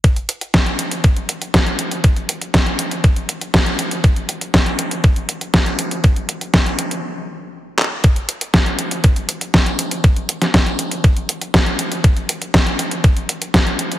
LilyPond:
\new DrumStaff \with { instrumentName = "Drums" } \drummode { \time 4/4 \tempo 4 = 120 <hh bd>16 hh16 hh16 hh16 <hh bd sn>16 hh16 hh16 hh16 <hh bd>16 hh16 hh16 hh16 <hh bd sn>16 hh16 hh16 hh16 | <hh bd>16 hh16 hh16 hh16 <hh bd sn>16 hh16 hh16 hh16 <hh bd>16 hh16 hh16 hh16 <hh bd sn>16 hh16 hh16 hh16 | <hh bd>16 hh16 hh16 hh16 <hh bd sn>16 hh16 hh16 hh16 <hh bd>16 hh16 hh16 hh16 <hh bd sn>16 hh16 hh16 hh16 | <hh bd>16 hh16 hh16 hh16 <hh bd sn>16 hh16 hh16 hh16 r4 r8 hc8 |
<hh bd>16 hh16 hh16 hh16 <hh bd sn>16 hh16 hh16 hh16 <hh bd>16 hh16 hh16 hh16 <hh bd sn>16 hh16 hh16 hh16 | <hh bd>16 hh16 hh16 <hh sn>16 <hh bd sn>16 hh16 hh16 hh16 <hh bd>16 hh16 hh16 hh16 <hh bd sn>16 hh16 hh16 hh16 | <hh bd>16 hh16 hh16 hh16 <hh bd sn>16 hh16 hh16 hh16 <hh bd>16 hh16 hh16 hh16 <hh bd sn>16 hh16 hh16 hh16 | }